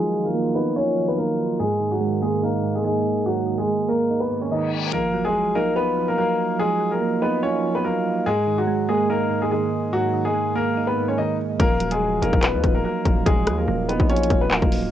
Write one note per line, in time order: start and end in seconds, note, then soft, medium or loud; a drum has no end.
0.00 1.56 D#3 medium
0.00 0.98 F3 medium
0.00 0.14 F#3 medium
0.00 0.23 G#3 medium
0.00 0.55 D#4 medium
0.00 1.56 D#4 medium
0.00 0.14 F4 medium
0.00 1.56 F4 medium
0.00 0.23 G#4 loud
0.14 1.16 F#3 medium
0.25 0.54 A#3 medium
0.25 0.54 A#4 medium
0.34 1.39 A#3 medium
0.55 0.73 B3 medium
0.55 1.60 D#4 loud
0.55 0.72 B4 medium
0.76 1.07 C#4 medium
0.76 1.59 F4 medium
0.76 1.06 C#5 medium
0.98 1.60 F3 medium
1.08 1.17 B3 medium
1.08 1.16 B4 medium
1.17 1.59 F#3 medium
1.17 1.57 A#3 medium
1.17 1.57 A#4 medium
1.59 4.89 G#2 medium
1.59 2.62 G#2 medium
1.59 4.89 D#3 medium
1.59 1.90 G#3 medium
1.59 4.89 A#3 medium
1.59 1.90 G#4 loud
1.80 2.83 D#3 medium
1.91 2.21 F#3 medium
1.91 2.20 F#4 medium
2.01 3.05 G#3 medium
2.22 2.40 G#3 medium
2.22 3.26 A#3 medium
2.22 2.39 G#4 medium
2.43 2.73 A#3 medium
2.43 3.47 D#4 medium
2.43 2.73 A#4 medium
2.63 3.25 G#2 medium
2.75 2.84 G#3 medium
2.75 2.83 G#4 medium
2.85 3.45 D#3 medium
2.85 3.24 G#3 medium
2.85 3.24 G#4 medium
3.26 4.29 G#2 medium
3.26 3.57 F#3 medium
3.26 3.56 F#4 medium
3.47 4.51 D#3 medium
3.58 3.87 G#3 medium
3.58 3.87 G#4 medium
3.67 4.72 G#3 medium
3.89 4.93 A#3 medium
3.89 4.19 A#3 medium
3.89 4.19 A#4 medium
4.10 4.93 D#4 medium
4.10 reverse cymbal medium
4.20 4.38 B3 medium
4.20 4.38 B4 medium
4.30 4.93 G#2 medium
4.41 4.50 C#4 medium
4.41 4.50 C#5 medium
4.51 4.93 D#3 medium
4.51 4.69 D#4 medium
4.51 4.68 D#5 medium
4.92 5.96 F3 medium
4.92 5.23 A#3 medium
4.92 5.23 A#4 loud
4.92 impact medium
5.14 6.17 F#3 medium
5.25 5.54 G#3 medium
5.25 5.54 G#4 medium
5.55 5.73 A#3 medium
5.55 6.60 D#4 medium
5.55 5.72 A#4 medium
5.76 6.07 B3 medium
5.76 6.80 F4 medium
5.76 6.06 B4 medium
5.97 6.58 F3 medium
6.08 6.17 A#3 medium
6.08 6.16 A#4 medium
6.18 6.79 F#3 medium
6.18 6.58 A#3 medium
6.18 6.57 A#4 medium
6.59 7.63 F3 medium
6.59 6.90 G#3 medium
6.59 6.89 G#4 loud
6.80 7.83 F#3 medium
6.92 7.21 A#3 medium
6.92 7.20 A#4 medium
7.01 8.05 A#3 medium
7.22 7.40 B3 medium
7.22 8.26 D#4 loud
7.22 7.39 B4 medium
7.43 7.73 C#4 medium
7.43 8.26 F4 medium
7.43 7.73 C#5 medium
7.64 8.26 F3 medium
7.75 7.83 B3 medium
7.75 7.83 B4 medium
7.84 8.26 F#3 medium
7.84 8.24 A#3 medium
7.84 8.24 A#4 medium
8.26 9.29 G#2 medium
8.26 8.57 G#3 medium
8.26 8.56 G#4 loud
8.47 9.50 D#3 medium
8.58 8.87 F#3 medium
8.58 8.87 F#4 medium
8.67 9.72 G#3 medium
8.89 9.06 G#3 medium
8.89 9.93 A#3 loud
8.89 9.06 G#4 medium
9.10 9.40 A#3 medium
9.10 10.14 D#4 medium
9.10 9.40 A#4 medium
9.30 9.91 G#2 medium
9.42 9.50 G#3 medium
9.42 9.50 G#4 medium
9.51 10.12 D#3 medium
9.51 9.91 G#3 medium
9.51 9.90 G#4 medium
9.93 10.96 G#2 medium
9.93 10.23 F#3 medium
9.93 10.23 F#4 loud
10.13 11.17 D#3 medium
10.25 10.54 G#3 medium
10.25 10.54 G#4 medium
10.34 11.39 G#3 medium
10.55 11.60 A#3 loud
10.55 10.86 A#3 medium
10.55 10.85 A#4 medium
10.77 11.60 D#4 medium
10.87 11.05 B3 medium
10.87 11.04 B4 medium
10.97 11.59 G#2 medium
11.08 11.17 C#4 medium
11.08 11.16 C#5 medium
11.18 11.60 D#3 medium
11.18 11.35 D#4 medium
11.18 11.35 D#5 medium
11.59 12.20 D#1 loud
11.59 12.63 F3 medium
11.59 11.90 A#3 medium
11.59 11.90 A#4 loud
11.59 kick loud
11.59 closed hi-hat loud
11.80 12.84 F#3 medium
11.80 closed hi-hat medium
11.91 12.21 G#3 medium
11.91 12.20 G#4 medium
11.91 closed hi-hat medium
12.22 12.33 D#1 loud
12.22 12.40 A#3 medium
12.22 13.26 D#4 medium
12.22 12.39 A#4 medium
12.22 closed hi-hat medium
12.33 12.55 D#1 loud
12.33 kick medium
12.43 12.73 B3 medium
12.43 13.47 F4 medium
12.43 12.73 B4 medium
12.43 clap loud
12.43 closed hi-hat medium
12.54 12.63 D#2 loud
12.64 12.84 D#1 loud
12.64 13.24 F3 medium
12.64 kick medium
12.64 closed hi-hat medium
12.75 12.83 A#3 medium
12.75 12.83 A#4 medium
12.85 13.46 F#3 medium
12.85 13.24 A#3 medium
12.85 13.24 A#4 medium
13.05 13.25 D#1 loud
13.05 kick medium
13.05 closed hi-hat medium
13.26 13.49 D#1 loud
13.26 14.30 F3 medium
13.26 13.57 G#3 medium
13.26 13.56 G#4 loud
13.26 kick loud
13.26 closed hi-hat loud
13.47 13.67 D#2 loud
13.47 14.50 F#3 medium
13.47 cross-stick loud
13.47 closed hi-hat medium
13.58 13.87 A#3 medium
13.58 13.87 A#4 medium
13.68 13.98 D#1 loud
13.68 14.72 A#3 medium
13.89 14.06 B3 medium
13.89 14.91 D#4 loud
13.89 14.06 B4 medium
13.89 closed hi-hat medium
14.00 14.29 A#1 loud
14.00 kick medium
14.09 14.40 C#4 medium
14.09 14.91 F4 medium
14.09 14.40 C#5 medium
14.09 closed hi-hat medium
14.16 closed hi-hat medium
14.23 closed hi-hat medium
14.30 14.61 D#1 loud
14.30 14.91 F3 medium
14.30 kick medium
14.30 closed hi-hat medium
14.41 14.50 B3 medium
14.41 14.49 B4 medium
14.51 14.91 F#3 medium
14.51 14.91 A#3 medium
14.51 14.90 A#4 medium
14.51 clap loud
14.62 14.84 D#1 loud
14.62 kick medium
14.72 open hi-hat medium
14.83 14.91 C#1 loud